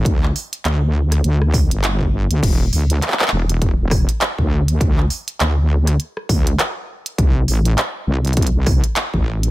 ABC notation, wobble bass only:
X:1
M:4/4
L:1/16
Q:"Swing 16ths" 1/4=101
K:Gmix
V:1 name="Wobble bass" clef=bass
D,,2 z2 D,,4 D,,3 G,,,4 D,, | E,,,2 D,,2 z2 E,,,3 E,,,2 z2 D,,3 | D,,2 z2 D,,4 z2 D,,2 z4 | C,,2 A,,,2 z2 C,,3 C,,2 z2 A,,,3 |]